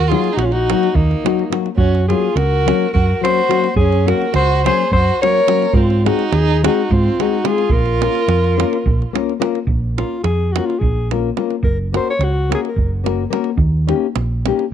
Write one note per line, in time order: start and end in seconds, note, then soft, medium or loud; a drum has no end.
0.00 0.14 D#2 medium
0.00 0.11 A#4 loud
0.07 0.29 F#3 medium
0.07 0.34 F4 medium
0.07 0.38 G#4 medium
0.12 0.29 A#3 medium
0.12 0.29 D#4 medium
0.12 0.29 F#4 medium
0.12 davul high soft
0.24 davul high soft
0.33 0.44 D#4 medium
0.37 0.72 A#1 medium
0.37 0.47 F#4 medium
0.37 davul high medium
0.42 0.52 C#4 medium
0.42 0.54 F4 medium
0.51 0.96 D#4 medium
0.51 0.97 F#4 medium
0.51 davul high soft
0.70 0.87 F#3 medium
0.70 0.87 A#3 medium
0.70 0.87 D#4 medium
0.70 0.88 F#4 medium
0.70 davul high medium
0.83 davul high soft
0.94 1.13 D#2 loud
0.94 1.52 A#3 medium
0.94 1.52 D#4 medium
0.94 davul low medium
1.11 davul high soft
1.24 1.42 F#3 medium
1.24 1.42 A#3 medium
1.24 1.43 D#4 medium
1.24 1.44 F#4 medium
1.24 davul high medium
1.39 davul high soft
1.50 1.68 F#3 medium
1.50 1.69 A#3 medium
1.50 1.69 D#4 medium
1.50 1.69 F#4 medium
1.50 davul high medium
1.66 davul high soft
1.76 2.13 F#2 loud
1.76 2.06 C#4 medium
1.76 2.07 F#4 medium
1.76 davul low medium
1.95 davul high soft
2.08 2.27 F#3 medium
2.08 2.28 A#3 medium
2.08 2.28 C#4 medium
2.08 2.37 F4 medium
2.08 2.28 F#4 medium
2.08 2.38 G#4 medium
2.08 davul high soft
2.36 2.71 C#2 medium
2.36 2.93 F#4 medium
2.36 2.93 A#4 loud
2.36 davul high medium
2.66 2.85 F#3 medium
2.66 2.85 A#3 medium
2.66 2.86 C#4 medium
2.66 2.86 F#4 medium
2.66 davul high medium
2.93 3.12 F#2 loud
2.93 3.21 F#4 medium
2.93 3.21 A#4 medium
2.93 davul low medium
3.21 3.40 F#3 medium
3.21 3.40 A#3 soft
3.21 3.41 C#4 medium
3.21 3.41 F#4 medium
3.21 3.73 F#4 medium
3.21 3.72 C5 loud
3.21 davul high medium
3.49 3.67 F#3 medium
3.49 3.67 A#3 medium
3.49 3.67 C#4 medium
3.49 3.67 F#4 medium
3.49 davul high medium
3.64 davul high soft
3.76 4.11 F#2 loud
3.76 4.10 C#4 medium
3.76 4.09 G#4 medium
3.76 davul low medium
3.92 davul high soft
4.05 4.24 F#3 medium
4.05 4.24 A#3 medium
4.05 4.25 C#4 medium
4.05 4.25 F#4 medium
4.05 4.33 F#4 medium
4.05 4.34 A#4 medium
4.05 davul high medium
4.22 davul high soft
4.34 4.69 C#2 medium
4.34 4.63 F#4 loud
4.34 4.64 C5 loud
4.34 davul high medium
4.65 4.83 F#3 medium
4.65 4.84 A#3 medium
4.65 4.84 C#4 medium
4.65 4.84 F#4 medium
4.65 4.91 G#4 medium
4.65 4.91 C5 loud
4.65 davul high medium
4.92 5.09 F#2 loud
4.92 5.21 F#4 loud
4.92 5.20 C5 loud
4.92 davul low medium
5.22 5.39 F#3 medium
5.22 5.39 A#3 medium
5.22 5.40 C#4 medium
5.22 5.40 F#4 medium
5.22 5.78 A#4 medium
5.22 5.77 C#5 loud
5.22 davul high medium
5.47 5.65 F#3 medium
5.47 5.65 A#3 medium
5.47 5.65 C#4 medium
5.47 5.66 F#4 medium
5.47 davul high medium
5.62 davul high soft
5.73 6.09 G#2 loud
5.73 6.06 C4 medium
5.73 6.06 F4 loud
5.73 davul low loud
5.90 davul high soft
6.05 6.23 G#3 medium
6.05 6.23 C4 medium
6.05 6.23 D#4 medium
6.05 6.35 D#4 medium
6.05 6.34 F#4 medium
6.05 6.23 G#4 medium
6.05 davul high medium
6.19 davul high soft
6.32 6.67 D#2 medium
6.32 6.65 D#4 loud
6.32 6.63 G#4 medium
6.32 davul high medium
6.63 6.81 G#3 medium
6.63 6.81 C4 medium
6.63 6.81 D#4 medium
6.63 6.92 F#4 medium
6.63 6.82 G#4 medium
6.63 davul high medium
6.67 6.94 D#4 medium
6.91 7.08 G#2 loud
6.91 7.23 C4 medium
6.91 7.21 F4 medium
6.91 davul low loud
7.19 7.36 G#3 medium
7.19 7.37 C4 medium
7.19 7.37 D#4 medium
7.19 7.47 D#4 medium
7.19 7.48 F#4 medium
7.19 7.37 G#4 medium
7.19 davul high medium
7.44 7.62 G#3 medium
7.44 7.62 C4 medium
7.44 7.62 D#4 medium
7.44 7.70 F4 medium
7.44 7.62 G#4 medium
7.44 7.73 G#4 loud
7.44 davul high medium
7.58 davul high soft
7.70 8.06 A#1 loud
7.70 9.15 F4 loud
7.70 9.16 A#4 medium
7.70 davul low loud
7.86 davul high soft
8.02 8.19 A#3 medium
8.02 8.20 C#4 medium
8.02 8.20 F4 medium
8.02 8.20 A#4 medium
8.02 davul high medium
8.15 davul high soft
8.28 8.63 F2 medium
8.28 davul high medium
8.44 davul high soft
8.57 8.76 A#3 medium
8.57 8.76 C#4 medium
8.57 8.77 F4 medium
8.57 8.77 A#4 medium
8.57 davul high medium
8.73 davul high soft
8.86 9.03 A#1 loud
8.86 davul low loud
9.02 davul high soft
9.13 9.32 A#3 medium
9.13 9.32 C#4 medium
9.13 9.32 F4 medium
9.13 9.33 A#4 medium
9.13 davul high medium
9.29 davul high soft
9.40 9.58 A#3 medium
9.40 9.58 C#4 medium
9.40 9.58 F4 medium
9.40 9.59 A#4 medium
9.40 davul high medium
9.55 davul high soft
9.67 10.02 A#1 loud
9.67 davul low medium
9.98 10.16 A#3 medium
9.98 10.16 C#4 medium
9.98 10.23 F4 medium
9.98 10.16 F4 medium
9.98 10.17 A#4 medium
9.98 davul high medium
10.23 10.59 F2 medium
10.23 10.54 G#4 medium
10.23 davul high medium
10.52 10.74 A#3 medium
10.52 10.67 F#4 medium
10.52 davul high medium
10.57 10.74 C#4 medium
10.57 10.75 F4 medium
10.57 10.75 A#4 medium
10.66 10.80 F4 medium
10.66 davul high soft
10.79 11.30 A#1 medium
10.79 11.10 G#4 medium
10.79 davul low medium
11.11 11.29 A#3 medium
11.11 11.29 C#4 medium
11.11 11.29 F4 medium
11.11 11.29 A#4 medium
11.11 davul high medium
11.37 11.54 A#3 medium
11.37 11.55 C#4 medium
11.37 11.55 F4 medium
11.37 11.55 A#4 medium
11.37 davul high medium
11.50 davul high soft
11.63 11.97 F#1 loud
11.63 11.78 A#4 medium
11.63 davul low loud
11.93 12.11 A#3 medium
11.93 12.11 C#4 soft
11.93 12.12 F#4 medium
11.93 12.12 A#4 medium
11.93 12.08 C5 medium
11.93 davul high medium
12.10 12.25 C#5 medium
12.19 12.54 C#2 medium
12.19 davul high medium
12.24 12.53 F#4 medium
12.49 12.68 A#3 medium
12.49 12.68 C#4 medium
12.49 12.69 F#4 medium
12.49 12.69 A#4 medium
12.49 davul high medium
12.55 12.60 G#4 medium
12.65 12.93 A#4 medium
12.65 davul high soft
12.76 13.25 F#1 medium
12.76 davul low medium
13.04 13.22 A#3 medium
13.04 13.23 C#4 medium
13.04 13.24 F#4 medium
13.04 13.24 A#4 medium
13.04 davul high medium
13.30 13.49 A#3 medium
13.30 13.49 C#4 medium
13.30 13.50 F#4 medium
13.30 13.50 A#4 medium
13.30 davul high medium
13.44 davul high soft
13.57 13.92 D#2 loud
13.57 davul low loud
13.87 14.06 A#3 medium
13.87 14.06 C#4 medium
13.87 14.06 D#4 medium
13.87 14.07 G4 medium
13.87 davul high medium
14.16 14.50 A#1 medium
14.16 davul high medium
14.46 14.64 A#3 medium
14.46 14.64 C#4 medium
14.46 14.64 D#4 medium
14.46 14.65 G4 medium
14.46 davul high medium
14.59 davul high soft